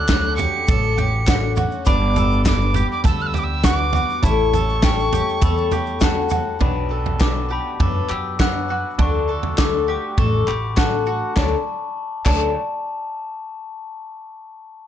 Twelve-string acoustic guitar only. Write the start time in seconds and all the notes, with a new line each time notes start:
0.07 F#3 A3 C#4 F#4
0.38 A3 C#4 F#4
0.67 D3 F#3 A3 C#4 F#4
0.96 A3 C#4 F#4
1.26 F#3 A3 C#4 F#4
1.56 A3 C#4 F#4
1.85 G2 D3 G3 B3 D4 G4
2.14 G3 B3 D4 G4
2.44 G3 B3 D4 G4
2.74 G3 B3 D4 G4
3.04 G2 D3 G3 B3 D4 G4
3.34 G3 B3 D4 G4
3.62 G3 B3 D4 G4
3.92 G3 B3 D4 G4
4.23 A2 E3 G3 A3 C#4 A4
4.53 A3 C#4 A4
4.82 G3 A3 C#4 A4
5.12 G3 A3 C#4 A4
5.41 A2 E3 G3 A3 C#4 A4
5.71 G3 A3 C#4 A4
6.00 G3 A3 C#4 A4
6.29 G3 A3 C#4 A4
6.59 B2 F#3 D4 F#4 B4
6.89 D4 F#4 B4
7.18 F#3 D4 F#4 B4
7.49 D4 F#4 B4
7.79 B2 F#3 D4 F#4 B4
8.09 D4 F#4 B4
8.39 F#3 D4 F#4 B4
8.68 D4 F#4 B4
8.99 D3 A3 F#4 A4
9.28 F#4 A4
9.57 A3 F#4 A4
9.87 F#4 A4
10.17 D3 A3 F#4 A4
10.47 F#4 A4
10.76 A3 F#4 A4
11.06 F#4 A4
11.36 D3 A3 C#4 F#4 A4
12.26 D3 A3 C#4 F#4 A4